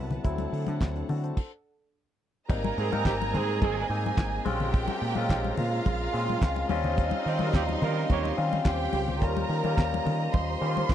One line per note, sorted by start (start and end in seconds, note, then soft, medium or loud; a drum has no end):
0.00 0.17 C2 medium
0.00 0.23 F#3 medium
0.00 0.27 B3 medium
0.00 0.24 C4 medium
0.00 0.21 E4 medium
0.00 0.25 E4 medium
0.00 0.22 B4 medium
0.00 0.21 F#5 medium
0.00 1.33 A5 medium
0.11 closed hi-hat soft
0.11 low conga medium
0.23 0.46 D2 medium
0.23 0.51 F#3 medium
0.23 0.51 A3 medium
0.23 0.51 C4 medium
0.23 1.36 D4 medium
0.23 0.52 E4 medium
0.23 1.36 A4 medium
0.23 1.36 F#5 medium
0.23 kick loud
0.23 closed hi-hat medium
0.23 muted conga soft
0.38 closed hi-hat soft
0.38 muted conga soft
0.38 high conga medium
0.53 0.64 D3 medium
0.53 open hi-hat medium
0.67 0.78 D3 loud
0.67 closed hi-hat soft
0.67 high conga medium
0.80 1.02 D2 medium
0.80 kick loud
0.80 snare loud
0.80 clap medium
0.80 closed hi-hat medium
0.80 muted conga soft
0.96 1.09 D4 medium
0.96 1.08 F#4 medium
0.96 closed hi-hat soft
1.09 1.30 D3 medium
1.09 1.23 F#4 medium
1.09 1.23 A4 medium
1.09 open hi-hat medium
1.09 low conga medium
1.24 1.51 A4 soft
1.24 1.50 C5 medium
1.24 closed hi-hat soft
1.37 kick medium
1.37 crash medium
2.48 2.71 G#1 loud
2.48 2.76 G3 medium
2.48 2.76 A#3 medium
2.48 2.76 C4 medium
2.48 2.77 D#4 medium
2.48 3.60 A#4 medium
2.48 4.44 C5 medium
2.48 4.44 D#5 medium
2.48 4.44 G#5 medium
2.48 3.60 A#5 medium
2.48 4.44 A#5 medium
2.48 kick loud
2.48 crash loud
2.64 muted conga soft
2.64 high conga medium
2.77 2.89 G#2 loud
2.77 2.89 D#3 medium
2.77 2.89 C4 medium
2.77 2.89 G#4 medium
2.77 open hi-hat medium
2.91 3.02 G#2 loud
2.91 3.54 G3 medium
2.91 3.02 G3 medium
2.91 3.54 A#3 medium
2.91 3.54 C4 medium
2.91 3.03 D#4 medium
2.91 3.55 D#4 medium
2.91 3.02 A#4 loud
2.91 high conga medium
3.05 3.35 G#1 loud
3.05 3.14 D#3 medium
3.05 3.14 C4 medium
3.05 3.14 G4 loud
3.05 kick loud
3.05 snare loud
3.05 clap medium
3.05 closed hi-hat medium
3.22 muted conga soft
3.22 high conga medium
3.33 3.63 G#2 loud
3.33 3.56 D#3 medium
3.33 3.56 C4 loud
3.33 3.56 G#4 loud
3.33 open hi-hat medium
3.33 low conga medium
3.61 3.83 G#1 loud
3.61 3.84 D#3 loud
3.61 3.84 C4 loud
3.61 3.84 G#4 loud
3.61 4.44 G#4 medium
3.61 4.44 G#5 medium
3.61 kick loud
3.61 closed hi-hat medium
3.61 muted conga soft
3.61 high conga medium
3.89 4.11 G#2 medium
3.89 4.43 G#3 medium
3.89 4.43 A#3 medium
3.89 4.44 C4 medium
3.89 4.44 D#4 medium
3.89 open hi-hat medium
4.06 high conga medium
4.17 4.39 G#1 loud
4.17 kick loud
4.17 snare loud
4.17 clap loud
4.17 closed hi-hat medium
4.45 4.88 A#1 loud
4.45 5.01 G#3 loud
4.45 6.68 G#3 medium
4.45 5.02 C4 loud
4.45 5.02 C#4 loud
4.45 5.02 F4 loud
4.45 5.56 G4 medium
4.45 6.68 A#4 medium
4.45 9.18 F5 medium
4.45 5.56 G5 medium
4.45 6.68 A#5 medium
4.45 open hi-hat medium
4.45 high conga medium
4.60 low conga medium
4.74 kick loud
4.74 closed hi-hat medium
4.88 muted conga soft
4.88 high conga medium
5.02 5.13 A#2 loud
5.02 open hi-hat medium
5.15 5.26 A#2 medium
5.15 5.78 G#3 medium
5.15 5.79 C4 medium
5.15 5.79 C#4 medium
5.15 5.79 F4 medium
5.15 high conga medium
5.29 5.51 A#1 loud
5.29 kick loud
5.29 snare loud
5.29 clap loud
5.29 closed hi-hat medium
5.29 muted conga soft
5.44 high conga medium
5.57 5.79 A#2 loud
5.57 6.67 F4 medium
5.57 6.67 F5 medium
5.57 open hi-hat medium
5.57 low conga medium
5.86 6.07 A#1 loud
5.86 kick loud
5.86 closed hi-hat medium
5.86 high conga medium
6.13 6.35 A#2 loud
6.13 6.67 G#3 medium
6.13 6.67 C4 medium
6.13 6.68 C#4 medium
6.13 6.68 F4 medium
6.13 open hi-hat medium
6.29 high conga medium
6.42 6.63 C#2 medium
6.42 kick loud
6.42 snare loud
6.42 clap loud
6.42 closed hi-hat medium
6.42 muted conga soft
6.56 muted conga soft
6.69 7.12 D#2 loud
6.69 7.25 G3 loud
6.69 7.26 C4 loud
6.69 7.26 C#4 loud
6.69 8.62 D#4 medium
6.69 7.26 F4 loud
6.69 10.95 G4 medium
6.69 10.95 C5 medium
6.69 8.62 D#5 medium
6.69 9.19 C6 medium
6.69 open hi-hat medium
6.69 high conga medium
6.84 low conga medium
6.97 kick loud
6.97 closed hi-hat medium
6.97 muted conga soft
7.11 high conga medium
7.26 7.38 C#3 medium
7.26 7.37 D#3 medium
7.26 7.38 C4 medium
7.26 7.38 G4 loud
7.26 open hi-hat medium
7.39 7.50 D#3 loud
7.39 7.46 F#3 medium
7.39 7.51 G3 medium
7.39 8.02 C4 medium
7.39 8.03 C#4 medium
7.39 7.51 F4 medium
7.39 8.03 F4 medium
7.39 7.51 A#4 medium
7.39 high conga medium
7.46 8.05 G3 medium
7.53 7.75 D#2 loud
7.53 7.62 C#3 medium
7.53 7.63 C4 medium
7.53 7.62 G4 medium
7.53 kick loud
7.53 snare loud
7.53 clap medium
7.53 closed hi-hat medium
7.53 muted conga soft
7.69 muted conga soft
7.69 high conga medium
7.82 8.03 D#3 loud
7.82 8.04 G3 loud
7.82 8.04 F4 loud
7.82 8.04 A#4 loud
7.82 open hi-hat medium
7.82 low conga medium
8.10 8.31 D#2 loud
8.10 8.32 A#3 loud
8.10 8.32 G4 loud
8.10 8.32 C#5 loud
8.10 kick loud
8.10 closed hi-hat medium
8.10 muted conga soft
8.10 high conga medium
8.25 muted conga soft
8.37 8.59 D#3 loud
8.37 8.91 G3 medium
8.37 8.91 C4 medium
8.37 8.91 C#4 medium
8.37 8.92 F4 medium
8.37 open hi-hat medium
8.53 high conga medium
8.65 8.86 D#2 loud
8.65 9.21 G4 medium
8.65 9.21 G5 medium
8.65 kick loud
8.65 snare loud
8.65 clap loud
8.65 closed hi-hat medium
8.65 muted conga soft
8.93 9.22 C#2 loud
8.93 open hi-hat medium
8.93 high conga medium
9.08 low conga medium
9.21 9.43 D#2 loud
9.21 9.48 G3 medium
9.21 9.48 A#3 medium
9.21 9.49 C#4 medium
9.21 9.49 F4 medium
9.21 10.31 A#4 medium
9.21 10.95 D#5 medium
9.21 10.31 A#5 medium
9.21 10.95 A#5 medium
9.21 kick loud
9.21 closed hi-hat medium
9.37 high conga medium
9.49 9.61 D#3 loud
9.49 open hi-hat medium
9.64 9.74 D#3 medium
9.64 10.26 G3 medium
9.64 10.26 A#3 medium
9.64 10.27 C#4 medium
9.64 10.27 F4 medium
9.64 high conga medium
9.77 9.99 D#2 loud
9.77 kick loud
9.77 snare loud
9.77 clap medium
9.77 closed hi-hat medium
9.77 muted conga soft
9.94 muted conga soft
9.94 high conga medium
10.06 10.27 D#3 loud
10.06 open hi-hat medium
10.06 low conga medium
10.34 10.55 D#2 loud
10.34 10.95 C5 medium
10.34 10.95 C6 medium
10.34 kick loud
10.34 closed hi-hat medium
10.34 muted conga soft
10.34 high conga medium
10.61 10.82 D#3 loud
10.61 10.95 G3 medium
10.61 10.95 A#3 medium
10.61 10.95 C#4 medium
10.61 10.69 D#4 medium
10.61 open hi-hat medium
10.69 10.95 F4 medium
10.77 high conga medium
10.89 10.95 D#2 loud
10.89 kick loud
10.89 snare loud
10.89 clap medium
10.89 closed hi-hat medium